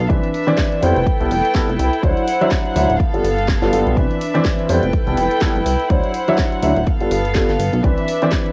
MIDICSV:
0, 0, Header, 1, 5, 480
1, 0, Start_track
1, 0, Key_signature, 0, "major"
1, 0, Tempo, 483871
1, 96, Time_signature, 4, 2, 24, 8
1, 8455, End_track
2, 0, Start_track
2, 0, Title_t, "String section"
2, 0, Program_c, 0, 48
2, 97, Note_on_c, 0, 71, 66
2, 97, Note_on_c, 0, 76, 85
2, 98, Note_on_c, 0, 62, 72
2, 805, Note_off_c, 0, 71, 0
2, 810, Note_off_c, 0, 62, 0
2, 810, Note_off_c, 0, 76, 0
2, 814, Note_on_c, 0, 79, 86
2, 815, Note_on_c, 0, 64, 84
2, 815, Note_on_c, 0, 69, 71
2, 817, Note_on_c, 0, 71, 71
2, 2003, Note_off_c, 0, 69, 0
2, 2003, Note_off_c, 0, 79, 0
2, 2004, Note_off_c, 0, 71, 0
2, 2015, Note_on_c, 0, 72, 69
2, 2015, Note_on_c, 0, 78, 83
2, 2954, Note_off_c, 0, 64, 0
2, 2966, Note_off_c, 0, 72, 0
2, 2966, Note_off_c, 0, 78, 0
2, 2968, Note_on_c, 0, 69, 71
2, 2971, Note_on_c, 0, 77, 86
2, 2973, Note_on_c, 0, 59, 78
2, 3922, Note_off_c, 0, 69, 0
2, 3924, Note_off_c, 0, 77, 0
2, 3925, Note_off_c, 0, 59, 0
2, 3934, Note_on_c, 0, 71, 70
2, 3935, Note_on_c, 0, 62, 75
2, 3935, Note_on_c, 0, 76, 79
2, 4648, Note_off_c, 0, 62, 0
2, 4648, Note_off_c, 0, 76, 0
2, 4653, Note_on_c, 0, 69, 71
2, 4655, Note_on_c, 0, 64, 81
2, 4655, Note_on_c, 0, 79, 83
2, 5836, Note_off_c, 0, 71, 0
2, 5842, Note_off_c, 0, 69, 0
2, 5843, Note_off_c, 0, 79, 0
2, 5854, Note_on_c, 0, 72, 67
2, 5854, Note_on_c, 0, 78, 83
2, 6794, Note_off_c, 0, 64, 0
2, 6805, Note_off_c, 0, 72, 0
2, 6805, Note_off_c, 0, 78, 0
2, 6816, Note_on_c, 0, 69, 68
2, 6818, Note_on_c, 0, 59, 78
2, 6820, Note_on_c, 0, 77, 88
2, 7766, Note_off_c, 0, 69, 0
2, 7767, Note_off_c, 0, 59, 0
2, 7768, Note_off_c, 0, 77, 0
2, 7781, Note_on_c, 0, 62, 75
2, 7781, Note_on_c, 0, 76, 85
2, 7783, Note_on_c, 0, 71, 76
2, 8455, Note_off_c, 0, 62, 0
2, 8455, Note_off_c, 0, 71, 0
2, 8455, Note_off_c, 0, 76, 0
2, 8455, End_track
3, 0, Start_track
3, 0, Title_t, "Grand piano"
3, 0, Program_c, 1, 0
3, 87, Note_on_c, 1, 52, 80
3, 90, Note_on_c, 1, 60, 72
3, 91, Note_on_c, 1, 62, 72
3, 95, Note_on_c, 1, 71, 88
3, 277, Note_off_c, 1, 52, 0
3, 278, Note_off_c, 1, 60, 0
3, 279, Note_off_c, 1, 62, 0
3, 281, Note_off_c, 1, 71, 0
3, 466, Note_on_c, 1, 52, 95
3, 467, Note_on_c, 1, 60, 89
3, 471, Note_on_c, 1, 62, 89
3, 473, Note_on_c, 1, 74, 108
3, 788, Note_off_c, 1, 52, 0
3, 789, Note_off_c, 1, 60, 0
3, 791, Note_off_c, 1, 62, 0
3, 792, Note_off_c, 1, 74, 0
3, 813, Note_on_c, 1, 55, 81
3, 816, Note_on_c, 1, 59, 72
3, 818, Note_on_c, 1, 64, 79
3, 822, Note_on_c, 1, 72, 93
3, 939, Note_off_c, 1, 55, 0
3, 941, Note_off_c, 1, 59, 0
3, 942, Note_off_c, 1, 64, 0
3, 944, Note_off_c, 1, 72, 0
3, 1190, Note_on_c, 1, 55, 78
3, 1192, Note_on_c, 1, 59, 72
3, 1193, Note_on_c, 1, 64, 74
3, 1196, Note_on_c, 1, 69, 91
3, 1287, Note_off_c, 1, 55, 0
3, 1288, Note_off_c, 1, 59, 0
3, 1289, Note_off_c, 1, 64, 0
3, 1290, Note_off_c, 1, 69, 0
3, 1531, Note_on_c, 1, 55, 90
3, 1532, Note_on_c, 1, 59, 85
3, 1535, Note_on_c, 1, 64, 80
3, 1538, Note_on_c, 1, 69, 101
3, 1659, Note_off_c, 1, 55, 0
3, 1659, Note_off_c, 1, 59, 0
3, 1661, Note_off_c, 1, 64, 0
3, 1662, Note_off_c, 1, 69, 0
3, 2018, Note_on_c, 1, 54, 79
3, 2020, Note_on_c, 1, 62, 73
3, 2022, Note_on_c, 1, 64, 73
3, 2026, Note_on_c, 1, 72, 82
3, 2202, Note_off_c, 1, 54, 0
3, 2203, Note_off_c, 1, 62, 0
3, 2204, Note_off_c, 1, 64, 0
3, 2206, Note_off_c, 1, 72, 0
3, 2389, Note_on_c, 1, 54, 100
3, 2392, Note_on_c, 1, 62, 89
3, 2394, Note_on_c, 1, 64, 88
3, 2397, Note_on_c, 1, 76, 103
3, 2709, Note_off_c, 1, 54, 0
3, 2711, Note_off_c, 1, 62, 0
3, 2712, Note_off_c, 1, 64, 0
3, 2713, Note_off_c, 1, 76, 0
3, 2731, Note_on_c, 1, 54, 84
3, 2734, Note_on_c, 1, 62, 75
3, 2737, Note_on_c, 1, 64, 73
3, 2739, Note_on_c, 1, 76, 93
3, 2859, Note_off_c, 1, 54, 0
3, 2860, Note_off_c, 1, 62, 0
3, 2862, Note_off_c, 1, 64, 0
3, 2863, Note_off_c, 1, 76, 0
3, 3107, Note_on_c, 1, 55, 80
3, 3108, Note_on_c, 1, 59, 70
3, 3111, Note_on_c, 1, 65, 71
3, 3114, Note_on_c, 1, 69, 88
3, 3205, Note_off_c, 1, 55, 0
3, 3206, Note_off_c, 1, 59, 0
3, 3207, Note_off_c, 1, 65, 0
3, 3209, Note_off_c, 1, 69, 0
3, 3585, Note_on_c, 1, 55, 96
3, 3588, Note_on_c, 1, 59, 88
3, 3590, Note_on_c, 1, 65, 89
3, 3594, Note_on_c, 1, 69, 105
3, 3668, Note_off_c, 1, 55, 0
3, 3669, Note_off_c, 1, 59, 0
3, 3670, Note_off_c, 1, 65, 0
3, 3672, Note_off_c, 1, 69, 0
3, 3690, Note_on_c, 1, 55, 84
3, 3692, Note_on_c, 1, 59, 72
3, 3696, Note_on_c, 1, 65, 76
3, 3699, Note_on_c, 1, 69, 92
3, 3908, Note_off_c, 1, 55, 0
3, 3909, Note_off_c, 1, 59, 0
3, 3911, Note_off_c, 1, 65, 0
3, 3912, Note_off_c, 1, 69, 0
3, 3927, Note_on_c, 1, 52, 80
3, 3931, Note_on_c, 1, 60, 71
3, 3934, Note_on_c, 1, 62, 72
3, 3937, Note_on_c, 1, 71, 86
3, 4117, Note_off_c, 1, 52, 0
3, 4119, Note_off_c, 1, 60, 0
3, 4120, Note_off_c, 1, 62, 0
3, 4122, Note_off_c, 1, 71, 0
3, 4304, Note_on_c, 1, 52, 96
3, 4309, Note_on_c, 1, 60, 87
3, 4311, Note_on_c, 1, 62, 88
3, 4314, Note_on_c, 1, 74, 107
3, 4627, Note_off_c, 1, 52, 0
3, 4630, Note_off_c, 1, 60, 0
3, 4631, Note_off_c, 1, 62, 0
3, 4632, Note_off_c, 1, 74, 0
3, 4656, Note_on_c, 1, 55, 82
3, 4659, Note_on_c, 1, 59, 74
3, 4660, Note_on_c, 1, 64, 70
3, 4663, Note_on_c, 1, 72, 88
3, 4781, Note_off_c, 1, 55, 0
3, 4782, Note_off_c, 1, 59, 0
3, 4783, Note_off_c, 1, 64, 0
3, 4785, Note_off_c, 1, 72, 0
3, 5024, Note_on_c, 1, 55, 79
3, 5024, Note_on_c, 1, 59, 74
3, 5030, Note_on_c, 1, 64, 74
3, 5031, Note_on_c, 1, 69, 90
3, 5124, Note_off_c, 1, 55, 0
3, 5124, Note_off_c, 1, 59, 0
3, 5127, Note_off_c, 1, 64, 0
3, 5128, Note_off_c, 1, 69, 0
3, 5372, Note_on_c, 1, 55, 94
3, 5375, Note_on_c, 1, 59, 82
3, 5377, Note_on_c, 1, 64, 86
3, 5379, Note_on_c, 1, 69, 100
3, 5499, Note_off_c, 1, 55, 0
3, 5501, Note_off_c, 1, 59, 0
3, 5502, Note_off_c, 1, 64, 0
3, 5502, Note_off_c, 1, 69, 0
3, 5851, Note_on_c, 1, 54, 80
3, 5852, Note_on_c, 1, 62, 71
3, 5856, Note_on_c, 1, 64, 71
3, 5861, Note_on_c, 1, 72, 85
3, 6039, Note_off_c, 1, 54, 0
3, 6039, Note_off_c, 1, 62, 0
3, 6041, Note_off_c, 1, 64, 0
3, 6043, Note_off_c, 1, 72, 0
3, 6228, Note_on_c, 1, 54, 95
3, 6232, Note_on_c, 1, 62, 86
3, 6233, Note_on_c, 1, 64, 86
3, 6235, Note_on_c, 1, 76, 110
3, 6549, Note_off_c, 1, 54, 0
3, 6551, Note_off_c, 1, 62, 0
3, 6551, Note_off_c, 1, 64, 0
3, 6553, Note_off_c, 1, 76, 0
3, 6570, Note_on_c, 1, 54, 83
3, 6572, Note_on_c, 1, 62, 78
3, 6574, Note_on_c, 1, 64, 77
3, 6579, Note_on_c, 1, 76, 93
3, 6698, Note_off_c, 1, 54, 0
3, 6699, Note_off_c, 1, 62, 0
3, 6700, Note_off_c, 1, 64, 0
3, 6702, Note_off_c, 1, 76, 0
3, 6948, Note_on_c, 1, 55, 81
3, 6951, Note_on_c, 1, 59, 74
3, 6951, Note_on_c, 1, 65, 69
3, 6957, Note_on_c, 1, 69, 89
3, 7046, Note_off_c, 1, 55, 0
3, 7047, Note_off_c, 1, 59, 0
3, 7048, Note_off_c, 1, 65, 0
3, 7051, Note_off_c, 1, 69, 0
3, 7295, Note_on_c, 1, 55, 88
3, 7296, Note_on_c, 1, 59, 84
3, 7299, Note_on_c, 1, 65, 83
3, 7302, Note_on_c, 1, 69, 102
3, 7421, Note_off_c, 1, 55, 0
3, 7421, Note_off_c, 1, 59, 0
3, 7423, Note_off_c, 1, 65, 0
3, 7424, Note_off_c, 1, 69, 0
3, 7772, Note_on_c, 1, 52, 78
3, 7775, Note_on_c, 1, 60, 72
3, 7778, Note_on_c, 1, 62, 75
3, 7782, Note_on_c, 1, 71, 91
3, 7959, Note_off_c, 1, 52, 0
3, 7961, Note_off_c, 1, 60, 0
3, 7962, Note_off_c, 1, 62, 0
3, 7964, Note_off_c, 1, 71, 0
3, 8153, Note_on_c, 1, 52, 96
3, 8156, Note_on_c, 1, 60, 94
3, 8158, Note_on_c, 1, 62, 86
3, 8161, Note_on_c, 1, 74, 105
3, 8455, Note_off_c, 1, 52, 0
3, 8455, Note_off_c, 1, 60, 0
3, 8455, Note_off_c, 1, 62, 0
3, 8455, Note_off_c, 1, 74, 0
3, 8455, End_track
4, 0, Start_track
4, 0, Title_t, "Analog synth bass"
4, 0, Program_c, 2, 38
4, 98, Note_on_c, 2, 36, 97
4, 202, Note_off_c, 2, 36, 0
4, 820, Note_on_c, 2, 41, 96
4, 924, Note_off_c, 2, 41, 0
4, 956, Note_on_c, 2, 29, 82
4, 1035, Note_off_c, 2, 29, 0
4, 1058, Note_on_c, 2, 36, 45
4, 1166, Note_off_c, 2, 36, 0
4, 1194, Note_on_c, 2, 36, 84
4, 1274, Note_off_c, 2, 36, 0
4, 1299, Note_on_c, 2, 29, 97
4, 1403, Note_off_c, 2, 29, 0
4, 1672, Note_on_c, 2, 29, 97
4, 1753, Note_off_c, 2, 29, 0
4, 1775, Note_on_c, 2, 36, 101
4, 1881, Note_off_c, 2, 36, 0
4, 2016, Note_on_c, 2, 38, 101
4, 2122, Note_off_c, 2, 38, 0
4, 2733, Note_on_c, 2, 38, 99
4, 2840, Note_off_c, 2, 38, 0
4, 2872, Note_on_c, 2, 26, 84
4, 2953, Note_off_c, 2, 26, 0
4, 3109, Note_on_c, 2, 31, 43
4, 3194, Note_off_c, 2, 31, 0
4, 3210, Note_on_c, 2, 31, 99
4, 3540, Note_off_c, 2, 31, 0
4, 3588, Note_on_c, 2, 31, 95
4, 3671, Note_off_c, 2, 31, 0
4, 3696, Note_on_c, 2, 31, 87
4, 3801, Note_off_c, 2, 31, 0
4, 3831, Note_on_c, 2, 35, 89
4, 3912, Note_off_c, 2, 35, 0
4, 3934, Note_on_c, 2, 36, 102
4, 4041, Note_off_c, 2, 36, 0
4, 4657, Note_on_c, 2, 41, 96
4, 4762, Note_off_c, 2, 41, 0
4, 4794, Note_on_c, 2, 29, 80
4, 4874, Note_off_c, 2, 29, 0
4, 4897, Note_on_c, 2, 36, 45
4, 5005, Note_off_c, 2, 36, 0
4, 5033, Note_on_c, 2, 36, 86
4, 5113, Note_off_c, 2, 36, 0
4, 5133, Note_on_c, 2, 29, 96
4, 5240, Note_off_c, 2, 29, 0
4, 5510, Note_on_c, 2, 29, 95
4, 5592, Note_off_c, 2, 29, 0
4, 5611, Note_on_c, 2, 36, 95
4, 5719, Note_off_c, 2, 36, 0
4, 5857, Note_on_c, 2, 38, 101
4, 5962, Note_off_c, 2, 38, 0
4, 6574, Note_on_c, 2, 38, 92
4, 6681, Note_off_c, 2, 38, 0
4, 6707, Note_on_c, 2, 26, 83
4, 6790, Note_off_c, 2, 26, 0
4, 6949, Note_on_c, 2, 31, 46
4, 7034, Note_off_c, 2, 31, 0
4, 7051, Note_on_c, 2, 31, 100
4, 7381, Note_off_c, 2, 31, 0
4, 7428, Note_on_c, 2, 31, 93
4, 7511, Note_off_c, 2, 31, 0
4, 7532, Note_on_c, 2, 31, 88
4, 7639, Note_off_c, 2, 31, 0
4, 7668, Note_on_c, 2, 35, 88
4, 7751, Note_off_c, 2, 35, 0
4, 7775, Note_on_c, 2, 36, 101
4, 7881, Note_off_c, 2, 36, 0
4, 8455, End_track
5, 0, Start_track
5, 0, Title_t, "Drums"
5, 97, Note_on_c, 9, 36, 127
5, 99, Note_on_c, 9, 42, 65
5, 196, Note_off_c, 9, 36, 0
5, 198, Note_off_c, 9, 42, 0
5, 234, Note_on_c, 9, 42, 40
5, 333, Note_off_c, 9, 42, 0
5, 339, Note_on_c, 9, 46, 110
5, 438, Note_off_c, 9, 46, 0
5, 475, Note_on_c, 9, 42, 40
5, 571, Note_on_c, 9, 38, 122
5, 574, Note_off_c, 9, 42, 0
5, 577, Note_on_c, 9, 36, 127
5, 577, Note_on_c, 9, 42, 65
5, 671, Note_off_c, 9, 38, 0
5, 676, Note_off_c, 9, 36, 0
5, 676, Note_off_c, 9, 42, 0
5, 716, Note_on_c, 9, 42, 38
5, 815, Note_off_c, 9, 42, 0
5, 819, Note_on_c, 9, 46, 103
5, 919, Note_off_c, 9, 46, 0
5, 956, Note_on_c, 9, 42, 37
5, 1055, Note_off_c, 9, 42, 0
5, 1057, Note_on_c, 9, 36, 127
5, 1059, Note_on_c, 9, 42, 64
5, 1156, Note_off_c, 9, 36, 0
5, 1158, Note_off_c, 9, 42, 0
5, 1196, Note_on_c, 9, 42, 40
5, 1295, Note_off_c, 9, 42, 0
5, 1299, Note_on_c, 9, 46, 107
5, 1398, Note_off_c, 9, 46, 0
5, 1436, Note_on_c, 9, 42, 39
5, 1534, Note_on_c, 9, 38, 118
5, 1536, Note_off_c, 9, 42, 0
5, 1536, Note_on_c, 9, 36, 127
5, 1539, Note_on_c, 9, 42, 65
5, 1633, Note_off_c, 9, 38, 0
5, 1635, Note_off_c, 9, 36, 0
5, 1639, Note_off_c, 9, 42, 0
5, 1677, Note_on_c, 9, 42, 38
5, 1777, Note_off_c, 9, 42, 0
5, 1779, Note_on_c, 9, 46, 113
5, 1878, Note_off_c, 9, 46, 0
5, 1917, Note_on_c, 9, 42, 39
5, 2016, Note_off_c, 9, 42, 0
5, 2016, Note_on_c, 9, 36, 127
5, 2019, Note_on_c, 9, 42, 64
5, 2115, Note_off_c, 9, 36, 0
5, 2118, Note_off_c, 9, 42, 0
5, 2154, Note_on_c, 9, 42, 36
5, 2253, Note_off_c, 9, 42, 0
5, 2258, Note_on_c, 9, 46, 109
5, 2357, Note_off_c, 9, 46, 0
5, 2395, Note_on_c, 9, 42, 38
5, 2490, Note_on_c, 9, 38, 116
5, 2494, Note_off_c, 9, 42, 0
5, 2496, Note_on_c, 9, 36, 124
5, 2496, Note_on_c, 9, 42, 66
5, 2589, Note_off_c, 9, 38, 0
5, 2595, Note_off_c, 9, 36, 0
5, 2595, Note_off_c, 9, 42, 0
5, 2634, Note_on_c, 9, 42, 38
5, 2733, Note_off_c, 9, 42, 0
5, 2737, Note_on_c, 9, 46, 108
5, 2836, Note_off_c, 9, 46, 0
5, 2875, Note_on_c, 9, 42, 38
5, 2974, Note_off_c, 9, 42, 0
5, 2975, Note_on_c, 9, 36, 124
5, 2979, Note_on_c, 9, 42, 61
5, 3074, Note_off_c, 9, 36, 0
5, 3078, Note_off_c, 9, 42, 0
5, 3115, Note_on_c, 9, 42, 42
5, 3214, Note_off_c, 9, 42, 0
5, 3218, Note_on_c, 9, 46, 106
5, 3317, Note_off_c, 9, 46, 0
5, 3356, Note_on_c, 9, 42, 41
5, 3453, Note_on_c, 9, 38, 119
5, 3455, Note_off_c, 9, 42, 0
5, 3455, Note_on_c, 9, 36, 124
5, 3459, Note_on_c, 9, 42, 62
5, 3552, Note_off_c, 9, 38, 0
5, 3554, Note_off_c, 9, 36, 0
5, 3558, Note_off_c, 9, 42, 0
5, 3589, Note_on_c, 9, 38, 35
5, 3595, Note_on_c, 9, 42, 37
5, 3689, Note_off_c, 9, 38, 0
5, 3694, Note_off_c, 9, 42, 0
5, 3697, Note_on_c, 9, 46, 114
5, 3797, Note_off_c, 9, 46, 0
5, 3835, Note_on_c, 9, 42, 40
5, 3934, Note_off_c, 9, 42, 0
5, 3936, Note_on_c, 9, 36, 123
5, 3937, Note_on_c, 9, 42, 66
5, 4035, Note_off_c, 9, 36, 0
5, 4037, Note_off_c, 9, 42, 0
5, 4073, Note_on_c, 9, 42, 37
5, 4172, Note_off_c, 9, 42, 0
5, 4178, Note_on_c, 9, 46, 105
5, 4277, Note_off_c, 9, 46, 0
5, 4314, Note_on_c, 9, 42, 39
5, 4412, Note_on_c, 9, 38, 118
5, 4413, Note_off_c, 9, 42, 0
5, 4416, Note_on_c, 9, 36, 119
5, 4418, Note_on_c, 9, 42, 62
5, 4511, Note_off_c, 9, 38, 0
5, 4515, Note_off_c, 9, 36, 0
5, 4517, Note_off_c, 9, 42, 0
5, 4554, Note_on_c, 9, 42, 39
5, 4653, Note_off_c, 9, 42, 0
5, 4655, Note_on_c, 9, 46, 108
5, 4755, Note_off_c, 9, 46, 0
5, 4792, Note_on_c, 9, 42, 36
5, 4891, Note_off_c, 9, 42, 0
5, 4895, Note_on_c, 9, 42, 63
5, 4896, Note_on_c, 9, 36, 122
5, 4994, Note_off_c, 9, 42, 0
5, 4995, Note_off_c, 9, 36, 0
5, 5031, Note_on_c, 9, 42, 41
5, 5131, Note_off_c, 9, 42, 0
5, 5134, Note_on_c, 9, 46, 101
5, 5233, Note_off_c, 9, 46, 0
5, 5271, Note_on_c, 9, 42, 40
5, 5370, Note_off_c, 9, 42, 0
5, 5370, Note_on_c, 9, 38, 118
5, 5376, Note_on_c, 9, 36, 121
5, 5376, Note_on_c, 9, 42, 63
5, 5469, Note_off_c, 9, 38, 0
5, 5475, Note_off_c, 9, 36, 0
5, 5475, Note_off_c, 9, 42, 0
5, 5514, Note_on_c, 9, 42, 37
5, 5613, Note_off_c, 9, 42, 0
5, 5616, Note_on_c, 9, 46, 111
5, 5715, Note_off_c, 9, 46, 0
5, 5751, Note_on_c, 9, 42, 39
5, 5850, Note_off_c, 9, 42, 0
5, 5855, Note_on_c, 9, 42, 67
5, 5856, Note_on_c, 9, 36, 125
5, 5954, Note_off_c, 9, 42, 0
5, 5955, Note_off_c, 9, 36, 0
5, 5988, Note_on_c, 9, 42, 41
5, 6087, Note_off_c, 9, 42, 0
5, 6092, Note_on_c, 9, 46, 102
5, 6191, Note_off_c, 9, 46, 0
5, 6230, Note_on_c, 9, 42, 39
5, 6327, Note_on_c, 9, 38, 116
5, 6329, Note_off_c, 9, 42, 0
5, 6333, Note_on_c, 9, 42, 68
5, 6335, Note_on_c, 9, 36, 116
5, 6426, Note_off_c, 9, 38, 0
5, 6432, Note_off_c, 9, 42, 0
5, 6435, Note_off_c, 9, 36, 0
5, 6472, Note_on_c, 9, 42, 37
5, 6571, Note_off_c, 9, 42, 0
5, 6572, Note_on_c, 9, 46, 100
5, 6671, Note_off_c, 9, 46, 0
5, 6711, Note_on_c, 9, 42, 38
5, 6810, Note_off_c, 9, 42, 0
5, 6812, Note_on_c, 9, 42, 65
5, 6815, Note_on_c, 9, 36, 118
5, 6912, Note_off_c, 9, 42, 0
5, 6914, Note_off_c, 9, 36, 0
5, 6949, Note_on_c, 9, 42, 42
5, 7048, Note_off_c, 9, 42, 0
5, 7054, Note_on_c, 9, 46, 98
5, 7153, Note_off_c, 9, 46, 0
5, 7192, Note_on_c, 9, 42, 41
5, 7288, Note_on_c, 9, 38, 113
5, 7291, Note_off_c, 9, 42, 0
5, 7293, Note_on_c, 9, 42, 66
5, 7295, Note_on_c, 9, 36, 114
5, 7387, Note_off_c, 9, 38, 0
5, 7393, Note_off_c, 9, 42, 0
5, 7394, Note_off_c, 9, 36, 0
5, 7424, Note_on_c, 9, 38, 36
5, 7430, Note_on_c, 9, 42, 39
5, 7523, Note_off_c, 9, 38, 0
5, 7529, Note_off_c, 9, 42, 0
5, 7535, Note_on_c, 9, 46, 105
5, 7634, Note_off_c, 9, 46, 0
5, 7671, Note_on_c, 9, 42, 39
5, 7770, Note_off_c, 9, 42, 0
5, 7776, Note_on_c, 9, 36, 123
5, 7776, Note_on_c, 9, 42, 70
5, 7875, Note_off_c, 9, 36, 0
5, 7875, Note_off_c, 9, 42, 0
5, 7913, Note_on_c, 9, 42, 41
5, 8012, Note_off_c, 9, 42, 0
5, 8016, Note_on_c, 9, 46, 95
5, 8115, Note_off_c, 9, 46, 0
5, 8153, Note_on_c, 9, 42, 43
5, 8249, Note_on_c, 9, 38, 112
5, 8252, Note_off_c, 9, 42, 0
5, 8255, Note_on_c, 9, 42, 67
5, 8257, Note_on_c, 9, 36, 112
5, 8348, Note_off_c, 9, 38, 0
5, 8354, Note_off_c, 9, 42, 0
5, 8356, Note_off_c, 9, 36, 0
5, 8392, Note_on_c, 9, 42, 42
5, 8455, Note_off_c, 9, 42, 0
5, 8455, End_track
0, 0, End_of_file